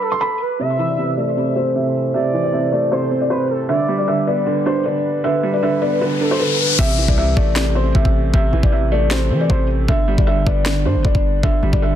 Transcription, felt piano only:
0.12 C6
0.21 B5
0.60 E5
0.89 D5
0.98 E5
1.17 D5
1.56 C5
1.76 E5
2.14 E5
2.44 D5
2.53 E5
2.72 D5
2.92 C5
3.21 D5
3.30 C5
3.69 E5
3.98 D5
4.08 E5
4.27 D5
4.66 C5
4.85 D5
5.24 E5
5.54 D5
5.63 E5
5.82 D5
6.01 B4
6.31 C5
6.40 B4
6.79 E5
7.08 D5
7.18 E5
7.37 D5
7.75 C5
7.95 E5
8.34 E5
8.63 D5
8.72 E5
8.92 D5
9.11 C5
9.41 D5
9.50 C5
9.88 E5
10.18 D5
10.27 E5
10.47 D5
10.86 C5
11.05 D5
11.43 E5
11.73 D5
11.83 E5

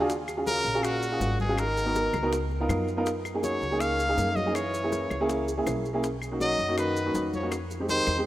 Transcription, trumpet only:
0.47 A#4
0.85 F#4
1.41 G#4
1.59 A#4
3.44 C#5
3.80 F5
4.36 D#5
4.55 C#5
6.41 D#5
6.79 B4
7.35 C#5
7.90 C5

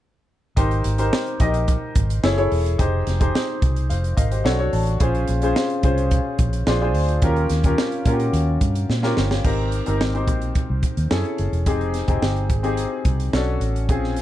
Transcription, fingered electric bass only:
0.57 G#1
0.85 G#1
1.40 A#1
1.96 G#1
2.23 F#1
2.52 E1
2.79 F1
3.07 F1
3.62 C2
3.91 F1
4.17 G#1
4.45 B1
4.73 A1
5.00 A#1
5.29 A#1
5.84 C2
6.39 A#1
6.67 A#1
6.95 D2
7.23 D#2
7.50 D#2
8.06 A#2
8.33 D#2
8.61 G2
8.89 A#2
9.17 G1
9.45 G#1
9.88 G1
10.01 G#1
10.28 A#1
10.70 C2
10.97 D#2
11.11 F#2
11.39 F#1
11.52 E1
11.66 F1
12.08 F1
12.22 G1
12.50 G#1
13.06 C2
13.33 B1
13.60 A1
13.89 A#1

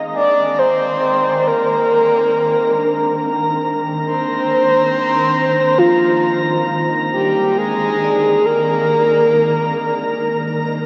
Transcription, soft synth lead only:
0.15 D5
0.59 C5
1.47 A#4
4.05 C5
5.78 F4
7.12 G4
7.58 G#4
8.45 A#4

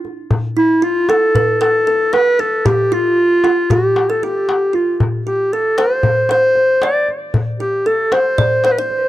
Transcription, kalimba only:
0.57 E4
0.82 F4
1.10 A4
1.36 B4
1.61 A4
1.87 A4
2.13 B4
2.39 A4
2.66 G4
2.92 F4
3.44 F4
3.71 G4
4.10 A4
4.23 G4
4.73 F4
5.27 G4
5.53 A4
5.78 C5
6.31 C5
6.83 D5
7.60 G4
7.86 A4
8.12 C5
8.38 D5
8.65 C5
8.78 C5

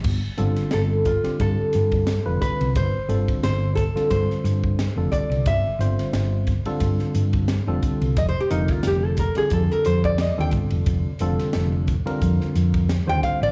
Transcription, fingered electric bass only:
0.04 G1
0.39 G1
0.74 G1
1.26 muted fingered electric bass stroke
1.40 G2
1.75 G2
2.27 F1
2.61 C2
2.76 G1
3.09 G1
3.43 G1
3.96 muted fingered electric bass stroke
4.11 G2
4.44 G2
4.96 F1
5.30 C2
5.46 G1
5.79 G1
6.13 G1
6.66 muted fingered electric bass stroke
6.82 G2
7.15 G2
7.67 F1
7.83 muted fingered electric bass stroke
8.01 C2
8.17 F1
8.51 F1
8.85 F1
9.39 muted fingered electric bass stroke
9.52 F2
9.86 F2
10.39 D#2
10.53 G1
10.72 F1
10.87 F1
11.20 F1
11.55 F1
12.22 F2
12.55 F2
13.08 D#2
13.42 A1

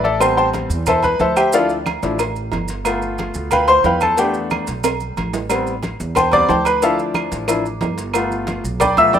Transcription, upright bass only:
Already playing: A1
0.69 E2
1.20 D2
2.03 A1
2.53 G1
3.35 D2
3.84 E2
4.68 B1
5.17 A1
6.00 E2
6.49 D2
7.32 A1
7.82 G1
8.64 B1
9.13 E2

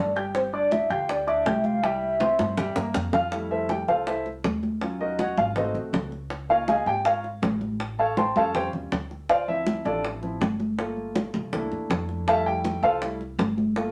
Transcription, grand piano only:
0.16 G4 G5 G6
0.53 D4 D5 D6
0.90 G4 G5 G6
1.27 D4 D5 D6
1.46 G4 G5 G6
1.83 G3 G4 G5
2.20 C4 C5 C6
2.57 G3 G4 G5
2.76 A#3 A#4 A#5
3.14 F4 F5 F6
3.32 G3 A3 E4
3.51 E4 A4 C5 E5
3.70 G4 G5
3.88 F4 A4 C5 F5
4.07 E4 A4 C5 E5
4.81 F#3 C#4 F4
5.01 D#4 F#4 A#4 D#5
5.20 F#4 C#5 D#5 F#5
5.38 F4 F5
5.56 A3 C4 D#4 F#4 A4 C5 D#5
6.49 A#3 D#4 F4 A#4 C#5 F5
6.69 G#4 D#5 F5 G#5
6.87 G4 G5
7.06 F4 A#4 C#5 F5
7.99 A4 C#5 F5 A5
8.18 C5 G5 A5 C6
8.36 G3 C#4 F4 A4 C#5 F5 A5
8.55 G4 C5 C#5 G5
9.30 F4 C5 D5 F5
9.48 F3 C4 E4 E5
9.86 D4 F4 A4 D5
10.22 F3 C4 E4
10.78 A3 A#3 F4
11.53 A3 A#3 D4 E4
12.27 G3 A3 E4 A4 E5 F5 A5
12.46 G4 G5
12.83 F4 A4 C5 F5
13.02 G3 A3 E4
13.76 A3 A#3 F4

